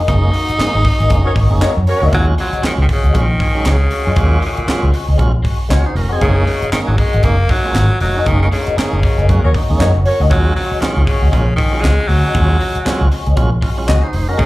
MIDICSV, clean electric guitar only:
0, 0, Header, 1, 3, 480
1, 0, Start_track
1, 0, Key_signature, -6, "minor"
1, 0, Tempo, 511073
1, 74, Time_signature, 4, 2, 24, 8
1, 13579, End_track
2, 0, Start_track
2, 0, Title_t, "Clean electric guitar"
2, 0, Program_c, 0, 27
2, 298, Note_on_c, 0, 58, 92
2, 309, Note_on_c, 0, 63, 87
2, 321, Note_on_c, 0, 66, 93
2, 462, Note_off_c, 0, 58, 0
2, 467, Note_off_c, 0, 63, 0
2, 473, Note_off_c, 0, 66, 0
2, 779, Note_on_c, 0, 58, 68
2, 789, Note_on_c, 0, 63, 69
2, 797, Note_on_c, 0, 66, 72
2, 913, Note_off_c, 0, 58, 0
2, 918, Note_off_c, 0, 63, 0
2, 922, Note_off_c, 0, 66, 0
2, 927, Note_on_c, 0, 68, 60
2, 939, Note_on_c, 0, 63, 64
2, 945, Note_on_c, 0, 58, 54
2, 1016, Note_off_c, 0, 58, 0
2, 1017, Note_off_c, 0, 68, 0
2, 1023, Note_off_c, 0, 63, 0
2, 1263, Note_on_c, 0, 58, 70
2, 1271, Note_on_c, 0, 63, 72
2, 1279, Note_on_c, 0, 66, 68
2, 1395, Note_off_c, 0, 58, 0
2, 1399, Note_off_c, 0, 63, 0
2, 1403, Note_off_c, 0, 66, 0
2, 1507, Note_on_c, 0, 58, 77
2, 1512, Note_on_c, 0, 63, 83
2, 1521, Note_on_c, 0, 66, 95
2, 1667, Note_off_c, 0, 58, 0
2, 1669, Note_off_c, 0, 63, 0
2, 1674, Note_off_c, 0, 66, 0
2, 1899, Note_on_c, 0, 66, 69
2, 1906, Note_on_c, 0, 63, 59
2, 1913, Note_on_c, 0, 58, 55
2, 1983, Note_off_c, 0, 66, 0
2, 1987, Note_off_c, 0, 63, 0
2, 1990, Note_off_c, 0, 58, 0
2, 2236, Note_on_c, 0, 56, 85
2, 2249, Note_on_c, 0, 61, 88
2, 2254, Note_on_c, 0, 66, 95
2, 2436, Note_off_c, 0, 56, 0
2, 2442, Note_off_c, 0, 61, 0
2, 2444, Note_off_c, 0, 66, 0
2, 2714, Note_on_c, 0, 56, 57
2, 2723, Note_on_c, 0, 61, 63
2, 2727, Note_on_c, 0, 66, 76
2, 2841, Note_off_c, 0, 56, 0
2, 2846, Note_off_c, 0, 61, 0
2, 2848, Note_off_c, 0, 66, 0
2, 2858, Note_on_c, 0, 66, 62
2, 2871, Note_on_c, 0, 61, 56
2, 2882, Note_on_c, 0, 56, 55
2, 2943, Note_off_c, 0, 66, 0
2, 2950, Note_off_c, 0, 61, 0
2, 2951, Note_off_c, 0, 56, 0
2, 3192, Note_on_c, 0, 56, 59
2, 3198, Note_on_c, 0, 61, 58
2, 3209, Note_on_c, 0, 68, 69
2, 3320, Note_off_c, 0, 56, 0
2, 3324, Note_off_c, 0, 61, 0
2, 3329, Note_off_c, 0, 68, 0
2, 3668, Note_on_c, 0, 56, 66
2, 3679, Note_on_c, 0, 61, 73
2, 3688, Note_on_c, 0, 66, 86
2, 3799, Note_off_c, 0, 56, 0
2, 3803, Note_off_c, 0, 66, 0
2, 3804, Note_off_c, 0, 61, 0
2, 3806, Note_on_c, 0, 68, 66
2, 3820, Note_on_c, 0, 61, 70
2, 3829, Note_on_c, 0, 56, 60
2, 3898, Note_off_c, 0, 68, 0
2, 3905, Note_off_c, 0, 61, 0
2, 3910, Note_off_c, 0, 56, 0
2, 4137, Note_on_c, 0, 56, 83
2, 4152, Note_on_c, 0, 61, 87
2, 4156, Note_on_c, 0, 66, 79
2, 4303, Note_off_c, 0, 56, 0
2, 4311, Note_off_c, 0, 61, 0
2, 4312, Note_off_c, 0, 66, 0
2, 4621, Note_on_c, 0, 56, 64
2, 4633, Note_on_c, 0, 61, 69
2, 4643, Note_on_c, 0, 66, 62
2, 4756, Note_off_c, 0, 56, 0
2, 4759, Note_off_c, 0, 66, 0
2, 4762, Note_off_c, 0, 61, 0
2, 4763, Note_on_c, 0, 68, 63
2, 4773, Note_on_c, 0, 61, 59
2, 4782, Note_on_c, 0, 56, 55
2, 4852, Note_off_c, 0, 56, 0
2, 4857, Note_off_c, 0, 68, 0
2, 4859, Note_off_c, 0, 61, 0
2, 5095, Note_on_c, 0, 56, 64
2, 5106, Note_on_c, 0, 61, 65
2, 5115, Note_on_c, 0, 66, 66
2, 5233, Note_off_c, 0, 56, 0
2, 5239, Note_off_c, 0, 61, 0
2, 5241, Note_off_c, 0, 66, 0
2, 5342, Note_on_c, 0, 56, 76
2, 5354, Note_on_c, 0, 61, 94
2, 5360, Note_on_c, 0, 66, 90
2, 5506, Note_off_c, 0, 56, 0
2, 5512, Note_off_c, 0, 61, 0
2, 5515, Note_off_c, 0, 66, 0
2, 5723, Note_on_c, 0, 66, 73
2, 5736, Note_on_c, 0, 61, 58
2, 5743, Note_on_c, 0, 56, 58
2, 5817, Note_off_c, 0, 66, 0
2, 5824, Note_off_c, 0, 61, 0
2, 5827, Note_off_c, 0, 56, 0
2, 6064, Note_on_c, 0, 58, 93
2, 6077, Note_on_c, 0, 63, 92
2, 6087, Note_on_c, 0, 66, 100
2, 6228, Note_off_c, 0, 58, 0
2, 6234, Note_off_c, 0, 63, 0
2, 6239, Note_off_c, 0, 66, 0
2, 6550, Note_on_c, 0, 58, 64
2, 6559, Note_on_c, 0, 63, 76
2, 6568, Note_on_c, 0, 66, 71
2, 6681, Note_off_c, 0, 58, 0
2, 6686, Note_off_c, 0, 63, 0
2, 6688, Note_off_c, 0, 66, 0
2, 6700, Note_on_c, 0, 66, 74
2, 6710, Note_on_c, 0, 63, 62
2, 6717, Note_on_c, 0, 58, 63
2, 6782, Note_off_c, 0, 58, 0
2, 6786, Note_off_c, 0, 66, 0
2, 6792, Note_off_c, 0, 63, 0
2, 7033, Note_on_c, 0, 58, 64
2, 7042, Note_on_c, 0, 63, 69
2, 7051, Note_on_c, 0, 68, 72
2, 7163, Note_off_c, 0, 58, 0
2, 7168, Note_off_c, 0, 63, 0
2, 7172, Note_off_c, 0, 68, 0
2, 7517, Note_on_c, 0, 58, 69
2, 7525, Note_on_c, 0, 63, 69
2, 7533, Note_on_c, 0, 66, 73
2, 7645, Note_off_c, 0, 58, 0
2, 7650, Note_off_c, 0, 63, 0
2, 7653, Note_off_c, 0, 66, 0
2, 7668, Note_on_c, 0, 68, 63
2, 7678, Note_on_c, 0, 63, 55
2, 7686, Note_on_c, 0, 58, 46
2, 7751, Note_off_c, 0, 68, 0
2, 7756, Note_off_c, 0, 63, 0
2, 7760, Note_off_c, 0, 58, 0
2, 7997, Note_on_c, 0, 58, 97
2, 8008, Note_on_c, 0, 63, 106
2, 8018, Note_on_c, 0, 66, 101
2, 8199, Note_off_c, 0, 58, 0
2, 8205, Note_off_c, 0, 63, 0
2, 8209, Note_off_c, 0, 66, 0
2, 8478, Note_on_c, 0, 58, 60
2, 8489, Note_on_c, 0, 63, 68
2, 8497, Note_on_c, 0, 66, 77
2, 8606, Note_off_c, 0, 58, 0
2, 8612, Note_off_c, 0, 63, 0
2, 8616, Note_off_c, 0, 66, 0
2, 8623, Note_on_c, 0, 68, 57
2, 8630, Note_on_c, 0, 63, 60
2, 8639, Note_on_c, 0, 58, 59
2, 8709, Note_off_c, 0, 58, 0
2, 8709, Note_off_c, 0, 68, 0
2, 8712, Note_off_c, 0, 63, 0
2, 8968, Note_on_c, 0, 58, 66
2, 8977, Note_on_c, 0, 63, 73
2, 8983, Note_on_c, 0, 66, 75
2, 9091, Note_off_c, 0, 58, 0
2, 9096, Note_off_c, 0, 63, 0
2, 9099, Note_off_c, 0, 66, 0
2, 9197, Note_on_c, 0, 58, 88
2, 9206, Note_on_c, 0, 63, 91
2, 9220, Note_on_c, 0, 66, 103
2, 9355, Note_off_c, 0, 58, 0
2, 9360, Note_off_c, 0, 63, 0
2, 9367, Note_off_c, 0, 66, 0
2, 9587, Note_on_c, 0, 66, 76
2, 9597, Note_on_c, 0, 63, 65
2, 9607, Note_on_c, 0, 58, 64
2, 9671, Note_off_c, 0, 66, 0
2, 9676, Note_off_c, 0, 63, 0
2, 9681, Note_off_c, 0, 58, 0
2, 9924, Note_on_c, 0, 56, 87
2, 9932, Note_on_c, 0, 61, 82
2, 9940, Note_on_c, 0, 66, 78
2, 10123, Note_off_c, 0, 56, 0
2, 10126, Note_off_c, 0, 61, 0
2, 10130, Note_off_c, 0, 66, 0
2, 10401, Note_on_c, 0, 56, 60
2, 10411, Note_on_c, 0, 61, 66
2, 10419, Note_on_c, 0, 66, 69
2, 10528, Note_off_c, 0, 56, 0
2, 10532, Note_off_c, 0, 61, 0
2, 10532, Note_off_c, 0, 66, 0
2, 10543, Note_on_c, 0, 66, 69
2, 10550, Note_on_c, 0, 61, 62
2, 10558, Note_on_c, 0, 56, 61
2, 10629, Note_off_c, 0, 66, 0
2, 10630, Note_off_c, 0, 56, 0
2, 10632, Note_off_c, 0, 61, 0
2, 10875, Note_on_c, 0, 56, 64
2, 10886, Note_on_c, 0, 61, 64
2, 10895, Note_on_c, 0, 68, 65
2, 11004, Note_off_c, 0, 56, 0
2, 11009, Note_off_c, 0, 61, 0
2, 11014, Note_off_c, 0, 68, 0
2, 11354, Note_on_c, 0, 56, 79
2, 11364, Note_on_c, 0, 61, 73
2, 11372, Note_on_c, 0, 66, 80
2, 11483, Note_off_c, 0, 56, 0
2, 11488, Note_off_c, 0, 61, 0
2, 11492, Note_off_c, 0, 66, 0
2, 11498, Note_on_c, 0, 68, 65
2, 11510, Note_on_c, 0, 61, 65
2, 11519, Note_on_c, 0, 56, 60
2, 11585, Note_off_c, 0, 68, 0
2, 11591, Note_off_c, 0, 61, 0
2, 11596, Note_off_c, 0, 56, 0
2, 11830, Note_on_c, 0, 56, 75
2, 11842, Note_on_c, 0, 61, 96
2, 11850, Note_on_c, 0, 66, 82
2, 11990, Note_off_c, 0, 56, 0
2, 11996, Note_off_c, 0, 61, 0
2, 12000, Note_off_c, 0, 66, 0
2, 12318, Note_on_c, 0, 56, 67
2, 12328, Note_on_c, 0, 61, 65
2, 12341, Note_on_c, 0, 66, 65
2, 12444, Note_off_c, 0, 56, 0
2, 12449, Note_off_c, 0, 61, 0
2, 12455, Note_off_c, 0, 66, 0
2, 12459, Note_on_c, 0, 68, 61
2, 12473, Note_on_c, 0, 61, 67
2, 12478, Note_on_c, 0, 56, 49
2, 12544, Note_off_c, 0, 68, 0
2, 12548, Note_off_c, 0, 56, 0
2, 12551, Note_off_c, 0, 61, 0
2, 12784, Note_on_c, 0, 56, 65
2, 12798, Note_on_c, 0, 61, 69
2, 12807, Note_on_c, 0, 66, 68
2, 12916, Note_off_c, 0, 56, 0
2, 12923, Note_off_c, 0, 61, 0
2, 12928, Note_off_c, 0, 66, 0
2, 13032, Note_on_c, 0, 56, 86
2, 13044, Note_on_c, 0, 61, 77
2, 13056, Note_on_c, 0, 66, 81
2, 13189, Note_off_c, 0, 56, 0
2, 13195, Note_off_c, 0, 61, 0
2, 13201, Note_off_c, 0, 66, 0
2, 13418, Note_on_c, 0, 66, 62
2, 13426, Note_on_c, 0, 61, 58
2, 13438, Note_on_c, 0, 56, 54
2, 13502, Note_off_c, 0, 66, 0
2, 13506, Note_off_c, 0, 61, 0
2, 13512, Note_off_c, 0, 56, 0
2, 13579, End_track
3, 0, Start_track
3, 0, Title_t, "Muted clean electric guitar strokes"
3, 544, Note_on_c, 9, 29, 36
3, 638, Note_off_c, 9, 29, 0
3, 689, Note_on_c, 9, 29, 40
3, 783, Note_off_c, 9, 29, 0
3, 1027, Note_on_c, 9, 29, 38
3, 1121, Note_off_c, 9, 29, 0
3, 1414, Note_on_c, 9, 29, 41
3, 1508, Note_off_c, 9, 29, 0
3, 1752, Note_on_c, 9, 29, 43
3, 1846, Note_off_c, 9, 29, 0
3, 2621, Note_on_c, 9, 29, 52
3, 2715, Note_off_c, 9, 29, 0
3, 2962, Note_on_c, 9, 29, 45
3, 3056, Note_off_c, 9, 29, 0
3, 3341, Note_on_c, 9, 29, 49
3, 3429, Note_off_c, 9, 29, 0
3, 3429, Note_on_c, 9, 29, 44
3, 3523, Note_off_c, 9, 29, 0
3, 3571, Note_on_c, 9, 29, 49
3, 3665, Note_off_c, 9, 29, 0
3, 4382, Note_on_c, 9, 29, 39
3, 4476, Note_off_c, 9, 29, 0
3, 4526, Note_on_c, 9, 29, 61
3, 4619, Note_off_c, 9, 29, 0
3, 4864, Note_on_c, 9, 29, 49
3, 4958, Note_off_c, 9, 29, 0
3, 5252, Note_on_c, 9, 29, 45
3, 5346, Note_off_c, 9, 29, 0
3, 5583, Note_on_c, 9, 29, 50
3, 5677, Note_off_c, 9, 29, 0
3, 6315, Note_on_c, 9, 29, 41
3, 6409, Note_off_c, 9, 29, 0
3, 6451, Note_on_c, 9, 29, 56
3, 6545, Note_off_c, 9, 29, 0
3, 6793, Note_on_c, 9, 29, 56
3, 6887, Note_off_c, 9, 29, 0
3, 7189, Note_on_c, 9, 29, 50
3, 7282, Note_off_c, 9, 29, 0
3, 7282, Note_on_c, 9, 29, 35
3, 7376, Note_off_c, 9, 29, 0
3, 7420, Note_on_c, 9, 29, 47
3, 7514, Note_off_c, 9, 29, 0
3, 8390, Note_on_c, 9, 29, 52
3, 8483, Note_off_c, 9, 29, 0
3, 8720, Note_on_c, 9, 29, 47
3, 8814, Note_off_c, 9, 29, 0
3, 9112, Note_on_c, 9, 29, 50
3, 9206, Note_off_c, 9, 29, 0
3, 9442, Note_on_c, 9, 29, 39
3, 9536, Note_off_c, 9, 29, 0
3, 10160, Note_on_c, 9, 29, 31
3, 10254, Note_off_c, 9, 29, 0
3, 10306, Note_on_c, 9, 29, 44
3, 10400, Note_off_c, 9, 29, 0
3, 10641, Note_on_c, 9, 29, 50
3, 10735, Note_off_c, 9, 29, 0
3, 11022, Note_on_c, 9, 29, 38
3, 11114, Note_off_c, 9, 29, 0
3, 11114, Note_on_c, 9, 29, 36
3, 11208, Note_off_c, 9, 29, 0
3, 11261, Note_on_c, 9, 29, 57
3, 11355, Note_off_c, 9, 29, 0
3, 12080, Note_on_c, 9, 29, 41
3, 12174, Note_off_c, 9, 29, 0
3, 12221, Note_on_c, 9, 29, 43
3, 12315, Note_off_c, 9, 29, 0
3, 12559, Note_on_c, 9, 29, 42
3, 12653, Note_off_c, 9, 29, 0
3, 12939, Note_on_c, 9, 29, 46
3, 13033, Note_off_c, 9, 29, 0
3, 13267, Note_on_c, 9, 29, 36
3, 13361, Note_off_c, 9, 29, 0
3, 13579, End_track
0, 0, End_of_file